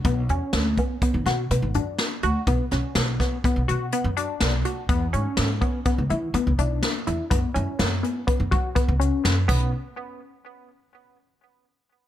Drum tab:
CC |----------|----------|----------|---------x|
HH |xxxxxxxxxx|xxxxxxxxxx|xxxxxxxxxx|xxxxxxxxx-|
SD |--o--o--o-|-ooo----o-|--o-----o-|--o-----o-|
BD |o--oo-----|o--oo-----|o--oo-----|o---ooo--o|

CC |----------|
HH |----------|
SD |----------|
BD |----------|